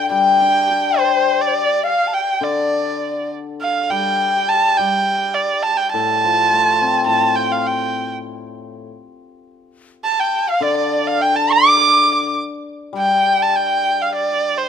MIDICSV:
0, 0, Header, 1, 4, 480
1, 0, Start_track
1, 0, Tempo, 573614
1, 95, Time_signature, 2, 2, 24, 8
1, 1536, Tempo, 592885
1, 3936, Tempo, 574163
1, 5856, Tempo, 585366
1, 12080, End_track
2, 0, Start_track
2, 0, Title_t, "Erhu"
2, 0, Program_c, 0, 110
2, 107, Note_on_c, 0, 79, 96
2, 820, Note_on_c, 0, 72, 87
2, 833, Note_off_c, 0, 79, 0
2, 1187, Note_on_c, 0, 74, 77
2, 1199, Note_off_c, 0, 72, 0
2, 1544, Note_off_c, 0, 74, 0
2, 1558, Note_on_c, 0, 77, 83
2, 1778, Note_on_c, 0, 79, 80
2, 1790, Note_off_c, 0, 77, 0
2, 2018, Note_on_c, 0, 74, 76
2, 2030, Note_off_c, 0, 79, 0
2, 2738, Note_off_c, 0, 74, 0
2, 2974, Note_on_c, 0, 77, 88
2, 3209, Note_on_c, 0, 79, 91
2, 3221, Note_off_c, 0, 77, 0
2, 3683, Note_on_c, 0, 81, 101
2, 3696, Note_off_c, 0, 79, 0
2, 3912, Note_on_c, 0, 79, 95
2, 3924, Note_off_c, 0, 81, 0
2, 4393, Note_on_c, 0, 74, 88
2, 4405, Note_off_c, 0, 79, 0
2, 4627, Note_on_c, 0, 81, 98
2, 4639, Note_off_c, 0, 74, 0
2, 4748, Note_on_c, 0, 79, 95
2, 4760, Note_off_c, 0, 81, 0
2, 4863, Note_off_c, 0, 79, 0
2, 4868, Note_on_c, 0, 81, 100
2, 5808, Note_off_c, 0, 81, 0
2, 5833, Note_on_c, 0, 81, 95
2, 6070, Note_on_c, 0, 79, 84
2, 6082, Note_off_c, 0, 81, 0
2, 6201, Note_on_c, 0, 77, 76
2, 6214, Note_off_c, 0, 79, 0
2, 6324, Note_on_c, 0, 79, 79
2, 6336, Note_off_c, 0, 77, 0
2, 6697, Note_off_c, 0, 79, 0
2, 8272, Note_on_c, 0, 81, 92
2, 8399, Note_on_c, 0, 79, 83
2, 8411, Note_off_c, 0, 81, 0
2, 8639, Note_on_c, 0, 77, 88
2, 8652, Note_off_c, 0, 79, 0
2, 8748, Note_on_c, 0, 74, 93
2, 8760, Note_off_c, 0, 77, 0
2, 8866, Note_off_c, 0, 74, 0
2, 8871, Note_on_c, 0, 74, 81
2, 9114, Note_on_c, 0, 77, 94
2, 9127, Note_off_c, 0, 74, 0
2, 9234, Note_on_c, 0, 79, 92
2, 9246, Note_off_c, 0, 77, 0
2, 9353, Note_on_c, 0, 81, 89
2, 9365, Note_off_c, 0, 79, 0
2, 9480, Note_on_c, 0, 86, 108
2, 9493, Note_off_c, 0, 81, 0
2, 10180, Note_off_c, 0, 86, 0
2, 10681, Note_on_c, 0, 79, 89
2, 11044, Note_on_c, 0, 81, 89
2, 11056, Note_off_c, 0, 79, 0
2, 11155, Note_on_c, 0, 79, 92
2, 11168, Note_off_c, 0, 81, 0
2, 11531, Note_on_c, 0, 77, 86
2, 11543, Note_off_c, 0, 79, 0
2, 11636, Note_off_c, 0, 77, 0
2, 11641, Note_on_c, 0, 74, 91
2, 11990, Note_on_c, 0, 72, 82
2, 12002, Note_off_c, 0, 74, 0
2, 12080, Note_off_c, 0, 72, 0
2, 12080, End_track
3, 0, Start_track
3, 0, Title_t, "Dizi"
3, 0, Program_c, 1, 73
3, 84, Note_on_c, 1, 79, 80
3, 816, Note_on_c, 1, 72, 69
3, 828, Note_off_c, 1, 79, 0
3, 880, Note_on_c, 1, 74, 59
3, 893, Note_off_c, 1, 72, 0
3, 932, Note_on_c, 1, 72, 71
3, 945, Note_off_c, 1, 74, 0
3, 1188, Note_on_c, 1, 74, 73
3, 1200, Note_off_c, 1, 72, 0
3, 1234, Note_on_c, 1, 72, 58
3, 1247, Note_off_c, 1, 74, 0
3, 1297, Note_on_c, 1, 74, 78
3, 1310, Note_off_c, 1, 72, 0
3, 1538, Note_on_c, 1, 77, 73
3, 1550, Note_off_c, 1, 74, 0
3, 1729, Note_on_c, 1, 81, 56
3, 1741, Note_off_c, 1, 77, 0
3, 1777, Note_on_c, 1, 79, 62
3, 1789, Note_off_c, 1, 81, 0
3, 2013, Note_off_c, 1, 79, 0
3, 2017, Note_on_c, 1, 74, 67
3, 2706, Note_off_c, 1, 74, 0
3, 8278, Note_on_c, 1, 81, 72
3, 8636, Note_on_c, 1, 77, 78
3, 8649, Note_off_c, 1, 81, 0
3, 8752, Note_on_c, 1, 74, 77
3, 8765, Note_off_c, 1, 77, 0
3, 9234, Note_on_c, 1, 79, 83
3, 9246, Note_off_c, 1, 74, 0
3, 9348, Note_on_c, 1, 81, 77
3, 9360, Note_off_c, 1, 79, 0
3, 9470, Note_on_c, 1, 86, 83
3, 9482, Note_off_c, 1, 81, 0
3, 10175, Note_off_c, 1, 86, 0
3, 12080, End_track
4, 0, Start_track
4, 0, Title_t, "Hammered dulcimer"
4, 0, Program_c, 2, 15
4, 0, Note_on_c, 2, 50, 53
4, 83, Note_on_c, 2, 55, 55
4, 345, Note_on_c, 2, 62, 42
4, 560, Note_off_c, 2, 50, 0
4, 589, Note_on_c, 2, 67, 43
4, 1297, Note_off_c, 2, 62, 0
4, 1530, Note_off_c, 2, 55, 0
4, 1544, Note_off_c, 2, 67, 0
4, 2000, Note_on_c, 2, 50, 56
4, 3209, Note_on_c, 2, 55, 60
4, 3454, Note_off_c, 2, 50, 0
4, 3920, Note_off_c, 2, 55, 0
4, 3930, Note_on_c, 2, 55, 62
4, 4889, Note_on_c, 2, 45, 58
4, 5142, Note_on_c, 2, 53, 51
4, 5372, Note_off_c, 2, 55, 0
4, 5379, Note_on_c, 2, 57, 42
4, 5621, Note_on_c, 2, 60, 46
4, 5823, Note_off_c, 2, 45, 0
4, 5833, Note_on_c, 2, 45, 55
4, 6098, Note_off_c, 2, 53, 0
4, 6339, Note_off_c, 2, 57, 0
4, 6584, Note_off_c, 2, 60, 0
4, 7299, Note_off_c, 2, 45, 0
4, 8733, Note_on_c, 2, 50, 62
4, 10159, Note_off_c, 2, 50, 0
4, 10638, Note_on_c, 2, 55, 53
4, 12080, Note_off_c, 2, 55, 0
4, 12080, End_track
0, 0, End_of_file